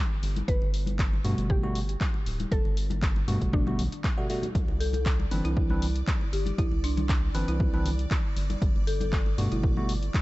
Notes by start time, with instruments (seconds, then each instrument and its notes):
Already playing: synth pluck G4
0.23 analog synth bass G1, open hi-hat, muted conga
0.36 closed hi-hat, high conga
0.48 analog synth bass G1, synth pluck B4, kick, closed hi-hat
0.62 analog synth bass G1, muted conga
0.74 open hi-hat
0.86 closed hi-hat, high conga
0.99 kick, clap, closed hi-hat
1.13 muted conga
1.25 analog synth bass G2, tine electric piano B2 G3 A3 F#4, open hi-hat, high conga
1.38 analog synth bass G1, closed hi-hat
1.50 synth pluck G4, kick
1.63 tine electric piano B2 G3 A3 F#4, high conga
1.75 open hi-hat
1.89 closed hi-hat
2.01 kick, clap, closed hi-hat, high conga
2.14 muted conga
2.26 analog synth bass D1, open hi-hat
2.40 closed hi-hat, high conga
2.52 analog synth bass G1, synth pluck A4, kick, closed hi-hat
2.65 analog synth bass G1, muted conga
2.77 open hi-hat
2.90 closed hi-hat, high conga, low conga
3.02 kick, clap, closed hi-hat
3.16 muted conga
3.28 analog synth bass G2, tine electric piano B2 G3 A3 F#4, open hi-hat
3.41 analog synth bass G1, kick, closed hi-hat
3.53 synth pluck D4, kick
3.67 tine electric piano B2 G3 A3 F#4, muted conga, high conga
3.79 analog synth bass B1, open hi-hat, low conga
3.92 closed hi-hat
4.04 kick, clap, closed hi-hat, high conga
4.18 tine electric piano B2 G3 A3 F#4
4.30 tine electric piano B2 G3 A3 F#4, open hi-hat, muted conga
4.43 closed hi-hat, high conga
4.55 analog synth bass C2, string machine D5 D6, kick, closed hi-hat
4.68 analog synth bass C2, muted conga
4.80 marimba A4, open hi-hat
4.93 marimba A4, closed hi-hat, high conga
5.06 kick, clap, closed hi-hat
5.20 muted conga
5.31 analog synth bass G1, tine electric piano E3 C4 D4 B4, open hi-hat, high conga
5.45 analog synth bass C2, marimba E4, closed hi-hat
5.57 kick
5.70 tine electric piano E3 C4 D4 B4, high conga
5.82 open hi-hat
5.96 closed hi-hat
6.07 kick, clap, closed hi-hat, high conga
6.21 muted conga
6.33 analog synth bass G1, marimba G4, open hi-hat
6.46 closed hi-hat, high conga
6.58 analog synth bass C2, marimba E4, kick, closed hi-hat
6.72 analog synth bass C2, muted conga
6.84 marimba D4, open hi-hat
6.97 marimba D4, closed hi-hat, high conga, low conga
7.09 kick, clap, closed hi-hat
7.35 analog synth bass G1, tine electric piano E3 C4 D4 B4, open hi-hat
7.48 analog synth bass C2, marimba E4, closed hi-hat
7.60 kick
7.74 tine electric piano E3 C4 D4 B4, muted conga, high conga
7.86 open hi-hat, low conga
7.99 closed hi-hat
8.11 kick, clap, closed hi-hat, high conga
8.36 analog synth bass G1, open hi-hat, muted conga
8.50 closed hi-hat, high conga
8.62 analog synth bass G1, kick, closed hi-hat
8.75 analog synth bass G1, muted conga
8.87 marimba A4, open hi-hat
9.01 marimba A4, closed hi-hat, high conga
9.13 kick, clap, closed hi-hat
9.26 muted conga
9.38 analog synth bass G2, tine electric piano B2 G3 A3 F#4, open hi-hat, high conga
9.52 analog synth bass G1, marimba E4, closed hi-hat
9.63 kick
9.77 tine electric piano B2 G3 A3 F#4, high conga
9.89 open hi-hat
10.03 closed hi-hat
10.14 kick, clap, closed hi-hat, high conga